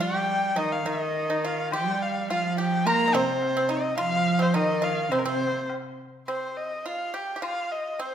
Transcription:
0.00 cello G3, pipa G4, erhu G5
0.56 cello D#3, pipa D#4, erhu D#5
0.72 erhu F5
0.85 cello D#3, pipa D#4, erhu D#5
1.30 pipa D#4
1.44 pipa F4, erhu F5
1.72 cello G3, pipa G4, erhu G5, high woodblock
2.02 erhu F5
2.30 cello F3, pipa F4, erhu F5, low woodblock
2.58 pipa G4, erhu G5
2.86 cello A#3, pipa A#4, erhu A#5, high woodblock
3.08 pipa D#4
3.14 cello C3, pipa C4, erhu C5
3.42 low woodblock
3.57 pipa C4
3.69 pipa D#4, erhu D#5
3.98 cello F3, pipa F4, erhu F5, high woodblock
4.39 pipa C4, erhu C5
4.54 cello D#3, pipa D#4, erhu D#5, low woodblock
4.82 pipa F4, erhu F5
5.12 cello C3, pipa C4, erhu C5, high woodblock
5.19 erhu A#4
5.25 cello C3, pipa C4, erhu C5
5.51 pipa A#3
5.69 high woodblock, low woodblock
6.28 pipa C4, erhu C5, high woodblock
6.57 erhu D#5
6.86 pipa F4, erhu F5
7.14 pipa G4, erhu G5
7.36 pipa G4
7.42 pipa F4, erhu F5, high woodblock
7.72 erhu D#5
7.99 pipa C4, erhu C5

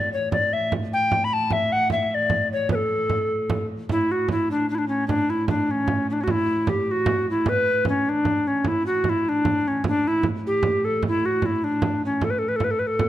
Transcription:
Already playing: viola da gamba A2, recorder D5
0.13 recorder C#5
0.32 recorder D5, frame drum
0.53 recorder E5, frame drum
0.72 frame drum
0.92 recorder G5, frame drum
1.12 frame drum
1.24 recorder B5
1.33 recorder A5
1.50 recorder E5, frame drum
1.70 recorder F#5, frame drum
1.90 recorder E5, frame drum
2.03 recorder E5
2.10 recorder E5, frame drum
2.15 recorder D5
2.30 frame drum
2.53 recorder C#5
2.69 recorder B4, frame drum
2.75 recorder A4
3.09 frame drum
3.50 frame drum
3.89 viola da gamba A2, recorder E4, frame drum
4.08 recorder F#4, frame drum
4.28 recorder E4, frame drum
4.50 recorder D4, frame drum
4.70 recorder D4
4.75 recorder D4 E4
4.88 recorder C#4
5.08 recorder D4, frame drum
5.29 recorder E4, frame drum
5.48 recorder D4, frame drum
5.67 recorder C#4, frame drum
5.88 frame drum
6.10 recorder C#4 D4
6.21 recorder C#4 F#4
6.27 recorder E4, frame drum
6.47 frame drum
6.67 recorder G4, frame drum
6.86 frame drum
6.91 recorder F#4
7.06 frame drum
7.30 recorder E4
7.46 recorder B4, frame drum
7.66 frame drum
7.85 recorder C#4, frame drum
8.05 recorder D4, frame drum
8.25 frame drum
8.47 recorder C#4
8.64 viola da gamba A2, recorder E4, frame drum
8.84 recorder F#4, frame drum
9.04 frame drum
9.09 recorder E4
9.25 frame drum
9.29 recorder D4
9.45 frame drum
9.68 recorder C#4
9.84 recorder D4, frame drum
10.04 recorder E4, frame drum
10.23 frame drum
10.43 recorder G4, frame drum
10.63 frame drum
10.85 recorder A4
11.03 frame drum
11.08 recorder E4
11.23 recorder F#4, frame drum
11.42 recorder E4, frame drum
11.62 recorder D4, frame drum
11.82 frame drum
12.05 recorder C#4
12.21 recorder A4, frame drum
12.30 recorder B4
12.39 recorder A4, frame drum
12.48 recorder B4
12.56 recorder A4
12.60 frame drum
12.64 recorder B4
12.71 recorder A4
12.79 recorder B4, frame drum
12.87 recorder A4
12.99 frame drum

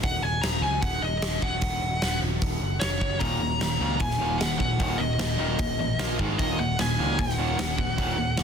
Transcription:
0.03 picked electric bass D#1, lead electric guitar F#5, kick, open hi-hat
0.22 picked electric bass D#1, lead electric guitar G#5
0.42 picked electric bass D#1, lead electric guitar A#5, snare, open hi-hat
0.61 picked electric bass C#2, lead electric guitar G#5
0.81 lead electric guitar F#5, kick, open hi-hat
1.01 picked electric bass D#1, lead electric guitar D#5
1.21 picked electric bass D#1, snare, open hi-hat
1.42 picked electric bass D#1, lead electric guitar F#5, kick
1.61 picked electric bass D#1, kick, open hi-hat
1.82 picked electric bass D#1
2.02 picked electric bass D#1, snare, open hi-hat
2.21 picked electric bass D#1
2.42 picked electric bass D#1, kick, open hi-hat
2.62 picked electric bass F#1
2.80 picked electric bass F1, lead electric guitar C#5, snare, open hi-hat
3.01 picked electric bass F#1, kick
3.19 picked electric bass D#1, overdriven electric guitar D#2 A#2 D#3, lead electric guitar A#5, kick, open hi-hat
3.40 picked electric bass D#1, overdriven electric guitar D#2 A#2
3.59 picked electric bass D#1, overdriven electric guitar D#2 A#2, snare, open hi-hat
3.79 picked electric bass C#2, overdriven electric guitar D#2 A#2 D#3
3.99 overdriven electric guitar D#2 A#2, lead electric guitar G#5, kick, open hi-hat
4.11 snare
4.19 picked electric bass D#1, overdriven electric guitar D#2 A#2 D#3
4.38 picked electric bass D#1, overdriven electric guitar D#2 A#2, lead electric guitar F#5, snare, open hi-hat
4.59 picked electric bass D#1, overdriven electric guitar D#2 A#2, lead electric guitar F#5, kick
4.79 picked electric bass D#1, overdriven electric guitar D#2 A#2 D#3, kick, open hi-hat
4.98 picked electric bass D#1, overdriven electric guitar D#2 A#2, lead electric guitar D#5
5.19 picked electric bass D#1, overdriven electric guitar D#2 A#2, snare, open hi-hat
5.38 picked electric bass D#1, overdriven electric guitar D#2 A#2 D#3
5.59 overdriven electric guitar D#2 A#2, kick, open hi-hat
5.79 picked electric bass A1, overdriven electric guitar D#2 A#2
5.99 picked electric bass A#1, overdriven electric guitar A#2 F3 A#3, snare, open hi-hat
6.19 picked electric bass G#1, overdriven electric guitar G#2 D#3 G#3, kick
6.39 picked electric bass D#1, overdriven electric guitar D#2 A#2 D#3, lead electric guitar D#5, kick, open hi-hat
6.59 picked electric bass D#1, overdriven electric guitar D#2 A#2, lead electric guitar F#5
6.79 picked electric bass D#1, overdriven electric guitar D#2 A#2, lead electric guitar G#5, snare, open hi-hat
6.99 picked electric bass C#2, overdriven electric guitar D#2 A#2 D#3
7.19 picked electric bass D#1, overdriven electric guitar D#2 A#2, lead electric guitar F#5, kick, open hi-hat
7.29 snare
7.38 picked electric bass D#1, overdriven electric guitar D#2 A#2 D#3
7.58 picked electric bass D#1, overdriven electric guitar D#2 A#2, snare, open hi-hat
7.78 picked electric bass D#1, overdriven electric guitar D#2 A#2, kick
7.98 picked electric bass D#1, overdriven electric guitar D#2 A#2 D#3, kick, open hi-hat
8.18 picked electric bass D#1, overdriven electric guitar D#2 A#2
8.37 picked electric bass D#1, overdriven electric guitar D#2 A#2, snare, open hi-hat

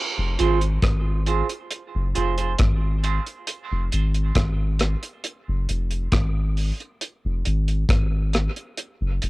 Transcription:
0.18 sub bass F1
0.39 sub bass G#1, clean electric guitar F4 G#4 C5, closed hi-hat
0.61 closed hi-hat
0.82 sub bass G#1, kick, cross-stick, closed hi-hat
1.26 clean electric guitar F4 G#4 C5, closed hi-hat
1.49 muted clean electric guitar stroke, closed hi-hat
1.71 closed hi-hat
1.95 sub bass F#1
2.15 sub bass F1, clean electric guitar F4 G#4 C5, closed hi-hat
2.38 clean electric guitar F4 G#4 C5, closed hi-hat
2.58 sub bass G#1, kick, cross-stick, closed hi-hat
3.03 clean electric guitar F4 G#4 C5, closed hi-hat
3.26 closed hi-hat
3.47 closed hi-hat
3.71 sub bass F1
3.92 sub bass G#1, clean electric guitar F4 G#4 C5, closed hi-hat
4.14 closed hi-hat
4.35 sub bass G#1, kick, cross-stick, closed hi-hat
4.79 cross-stick, closed hi-hat
5.03 closed hi-hat
5.24 closed hi-hat
5.48 sub bass F#1
5.69 sub bass F1, closed hi-hat
5.91 closed hi-hat
6.12 sub bass G#1, kick, cross-stick, closed hi-hat
6.57 open hi-hat
6.80 closed hi-hat
7.01 closed hi-hat
7.25 sub bass F1
7.45 sub bass G#1, closed hi-hat
7.68 closed hi-hat
7.89 sub bass G#1, kick, cross-stick, closed hi-hat
8.33 cross-stick, closed hi-hat
8.56 closed hi-hat
8.77 closed hi-hat
9.01 sub bass F#1
9.22 sub bass F1, closed hi-hat

